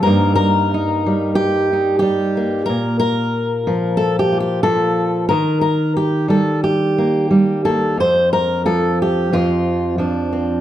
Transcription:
steel-string acoustic guitar
0.03 G2 G3 A#3 A#4
0.07 D#4
0.35 A#4
0.74 D#4
1.06 G3
1.35 G4
1.73 D#4
1.99 G3 G4
2.37 A#3
2.66 A#2 A#4
3.00 A#4
3.67 F3
3.97 A4
4.19 G4
4.32 F4
4.40 G4
4.63 F3 A4
5.29 D#3 A#4
5.61 A#4
5.97 G4
6.28 G3 A4
6.64 G4
6.98 A#3
7.31 G3
7.65 A#3 A4
7.97 F2 C5
8.33 A#4
8.65 F3 A4
9.02 G4
9.33 F2 F3 C4 F4
9.98 F3 D4
10.33 C4

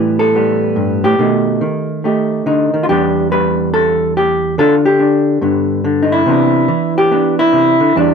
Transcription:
hollow-body jazz guitar
Already playing: A2 E3 G3 B3 G4
0.19 A4
0.35 G3 B3
0.76 G2
1.04 A2 G4
1.19 B2 D#3 A3 D#4
1.61 D#3
2.04 A3 D#4 G4
2.46 D3 D#4
2.74 D#3
2.83 F4
2.89 E2 G3 B3 D4 G4
3.31 G3 B4
3.74 A4
4.17 G4
4.58 D3 D4 F4 A4
4.86 G4
4.99 D4
5.41 G2 D3 B3
5.84 D3
6.03 D#4
6.12 E4
6.26 C3 E3 B3 D4
6.68 E3
6.98 G4
7.11 B3 D4
7.39 E4
7.53 C3
7.80 D3
7.96 E2 E3 G3 D4

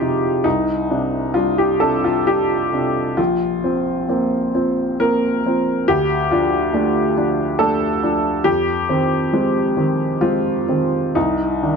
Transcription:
upright piano
Already playing: F2 F3 F4 G4
0.00 C3 D#4
0.44 C2 D#4
0.90 C3 D4
1.34 G3 D4 F4
1.58 G4
1.80 C3 D4 A4
2.04 F4
2.27 G3 D4 G4
2.73 C3 D4
3.17 A#1 F4
3.64 F3 C4
4.08 A#3 C4
4.54 F3 C4
5.00 A#3 C4 A#4
5.46 F3 C4
5.88 D2 G4
6.31 F3 D4 F4
6.74 A3 D4
7.17 F3 D4
7.59 A3 D4 A4
8.03 F3 D4
8.44 F2 G4
8.89 D#3 C4
9.33 G#3 C4
9.77 D#3 C4
10.21 G#3 C4 F4
10.69 D#3 C4
11.15 C2 D#4
11.63 D#3 D4

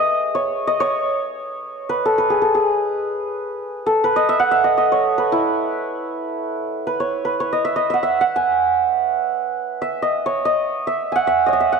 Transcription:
santur
Already playing: G#4 B4 D#5
0.35 C#5
0.67 D#5
0.80 C#5
1.89 B4
2.05 A4
2.18 B4
2.30 G#4
2.42 A4
2.55 G#4
3.86 A4
4.04 B4
4.16 D#5
4.29 E5
4.40 F#5
4.51 E5
4.64 D#5
4.78 D#5
4.92 C#5
5.18 B4
5.32 E4
6.87 B4
7.00 C#5
7.25 B4
7.40 C#5
7.53 D#5
7.65 E5
7.76 D#5
7.90 E5 F#5
8.03 E5
8.21 F#5
8.36 G#5
9.82 E5
10.02 D#5
10.26 C#5
10.45 D#5
10.87 E5
11.12 F#5 G#5
11.27 E5
11.46 C#5 D#5
11.53 D#5
11.60 E5
11.72 F#5

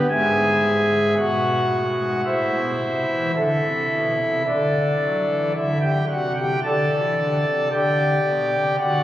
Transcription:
pipe organ
0.10 G#2 G#4 E5 G#5
1.17 B2 F#4 F#5
1.72 A2
1.98 G#2
2.25 A2 E4 C5 E5
2.53 B2
2.80 C3
3.08 E3
3.36 D3 E4 A4 E5
3.64 C3
3.91 B2
4.19 C3
4.47 D3 D4 A4 D5
5.02 F#3
5.27 E3
5.55 D3 E4 E5
5.82 G4 G5
6.09 C3 F#4 F#5
6.36 G4 G5
6.64 D3 A4 D5 A5
6.91 E3
7.18 D3
7.46 C3
7.72 D3 G4 D5 G5
8.26 B2
8.53 C3
8.79 D3 F#4 D5 F#5

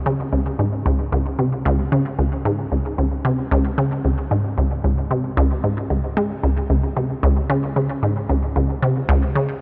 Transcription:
synth arpeggio sound
0.06 C#3
0.33 C#2
0.59 G#2
0.86 C#2
1.12 C#2
1.39 C3
1.65 C#2
1.92 C#3
2.19 C#2
2.45 G#2
2.72 C#2
2.98 C#2
3.25 C3
3.51 C#2
3.78 C#3
4.05 C#2
4.31 G#2
4.58 C#2
4.84 C#2
5.11 C3
5.37 C#2
5.64 G#2
5.90 C#2
6.17 G#3
6.43 C#2
6.70 C#2
6.96 C3
7.23 C#2
7.50 C#3
7.76 C#3
8.03 G#2
8.30 C#2
8.56 C#2
8.82 C3
9.09 C#2
9.35 C#3

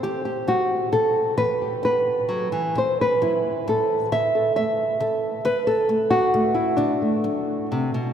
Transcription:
nylon-string guitar
0.03 E3 G4
0.25 G4
0.48 G3 F#4
0.92 B2 A4
1.38 E3 B4
1.62 G4
1.83 E4 B4
2.29 F#3
2.52 E3
2.75 D3 C5
3.01 B4
3.22 F#3 E4
3.68 A2 A4
4.12 D3 E5
4.35 A4
4.56 A3 E5
5.00 D3 A4
5.45 D3 B4
5.67 A4
5.89 A3
6.10 F#4
6.34 D3 A3
6.54 E4
6.77 D3 D4
7.02 A3
7.24 F#3
7.72 C3
7.94 B2

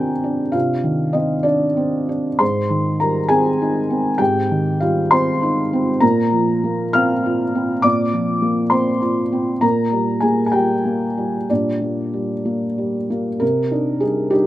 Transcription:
felt piano
Already playing: C3 D#3 C4 D4 G4 G#4 A#4 G5 G#5 A#5
0.24 D4
0.52 C3 F4 F5
0.84 D#3
1.13 C4 D#4 D#5
1.43 D4 D5
1.77 C4
2.09 D4
2.39 G#2 C5 C6
2.70 D#3
3.00 G3 A#4 A#5
3.29 C4 G#4 G#5
3.62 D#4
3.90 C4
4.18 G#2 G4 G5
4.51 D#3
4.80 G3 F4 F5
5.11 C4 C5 C6
5.43 D#4
5.73 C4
6.00 A#2 A#4 A#5
6.32 F3
6.64 A#3
6.93 C4 F5 F6
7.26 F4
7.55 C4
7.82 A#2 D5 D6
8.13 F3
8.42 A#3
8.70 C4 C5 C6
9.02 F4
9.32 C4
9.61 A#2 A#4 A#5
9.92 G3
10.21 A#3 G#4 G#5
10.46 G#5
10.52 G3 G4 G5
10.85 A#3
11.18 G3
11.50 A#2 D4 D5
11.82 A#3
12.13 G3
12.45 A#3
12.78 G3
13.10 A#3
13.40 C3 A#4
13.71 D4 D#4
14.00 G3 D4 D#4 G#4
14.30 G3 D4 D#4 G4

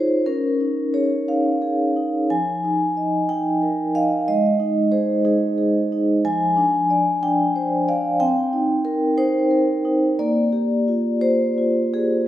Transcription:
vibraphone
Already playing: D#4 F4 G#4 C5 C#5
0.26 C#4 A#4
0.60 D#4
0.94 G#4 C#5
1.28 D#4 F5
1.62 G#4
1.96 D#4
2.30 F3 G#5
2.64 D#4
2.97 D#5
3.29 D#4 G5
3.62 A#4
3.95 D#5 F5
4.28 G#3 D#5
4.60 D#4
4.92 G#4 C5
5.25 D#4 G#4
5.58 G#4
5.92 D#4
6.25 F3 G#5
6.57 D4
6.90 D5
7.22 D4 G5
7.56 C5
7.88 D5 F5
8.20 C4 G5
8.53 D#4
8.85 A#4
9.17 D#4 C5
9.51 A#4
9.85 D#4
10.19 A#3 D5
10.53 G4
10.88 F4
11.21 G4 C5
11.58 F4
11.94 G4 G#4

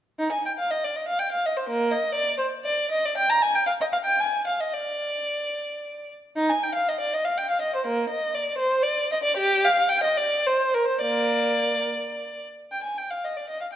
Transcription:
violin
0.19 D#4
0.32 G#5
0.46 G5
0.59 F5
0.71 D#5
0.85 D5
0.96 D#5
1.08 F5
1.20 G5
1.32 F5
1.46 D#5
1.57 C5
1.70 A#3
1.92 D#5
2.15 D5
2.38 C5
2.65 D5
2.91 D#5
3.05 D5
3.17 G5
3.30 A#5
3.42 G#5
3.55 G5
3.67 F5
3.81 D#5
3.93 F5
4.05 G5
4.20 G#5
4.47 F5
4.61 D#5
4.74 D5
6.36 D#4
6.50 G#5
6.63 G5
6.75 F5
6.89 D#5
7.00 D5
7.14 D#5
7.25 F5
7.38 G5
7.51 F5
7.62 D#5
7.76 C5
7.87 A#3
8.10 D#5
8.35 D5
8.59 C5
8.83 D5
9.12 D#5
9.24 D5
9.38 G4
9.65 F5
9.89 G5
10.04 D#5
10.17 D5
10.46 C5
10.74 A#4
10.88 C5
11.01 A#3 D5
12.72 G5
12.84 G#5
12.98 G5
13.11 F5
13.25 D#5
13.37 D5
13.50 D#5
13.61 F5

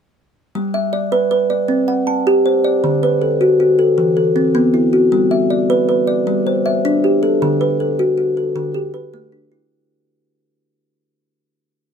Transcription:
kalimba
0.55 G3
0.74 E5
0.93 D5
1.12 B4
1.31 B4
1.50 D5
1.68 C4
1.88 F#5
2.07 A5
2.27 G4
2.46 C5
2.64 D5
2.84 D3
3.03 B4
3.22 A4
3.41 F#4
3.60 F#4
3.79 A4
3.98 E3
4.17 A4
4.36 C4
4.55 B3
4.74 E4
4.93 F#4
5.12 G3
5.31 E5
5.50 D5
5.70 B4
5.89 B4
6.07 D5
6.27 G3
6.47 C5
6.66 E5
6.85 D4
7.04 G4
7.23 A4
7.42 D3
7.61 B4
7.80 A4
7.99 F#4
8.18 F#4
8.37 A4
8.56 D3
8.74 G4
8.94 B4
9.14 A3
9.32 D4
9.52 E4

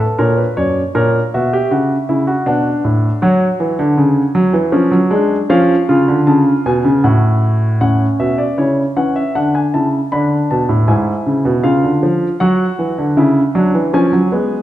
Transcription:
grand piano
Already playing: F#5
0.00 A4
0.18 A#2 A#4 C#5
0.37 B4
0.57 F#2 C#5 D5
0.95 A#2 A#4 C#5
1.34 B2 F#4 E5
1.53 G4
1.71 C#3 F#4
2.09 C#3 E4
2.27 F#4
2.46 B2 D4 F#5
2.85 A2
3.22 F#3 F#4 C#5
3.60 E3
3.79 D3
3.97 C#3
4.35 F#3
4.53 E3
4.72 F3 C#4
4.91 F#3
5.11 G#3 D4
5.49 F3 C#4 F5
5.89 C#3 F4
6.08 D3
6.27 C#3 A5
6.66 B2 G#5
6.85 C#3
7.04 A2 F#4 F#5
7.81 A2 C#4 F#5
8.20 B2 E5
8.38 D5
8.58 C#3 E4 C#5
8.96 E3 C#4 F#5
9.16 E5
9.35 D3 D4 F#5
9.55 G#5
9.74 C#3 E4 A5
10.12 D3 D4 B5
10.51 B2 A5
10.69 A2
10.88 G#2 E4 G#5
11.26 C#3
11.45 B2
11.63 C#3 F4 F5
11.84 D3
12.03 F3
12.40 F#3 F#4 F#5
12.79 E3
12.98 D3
13.17 C#3 E4
13.55 F#3 D4
13.74 E3
13.93 F3 C#4 G#5
14.13 F#3
14.32 G#3 B3

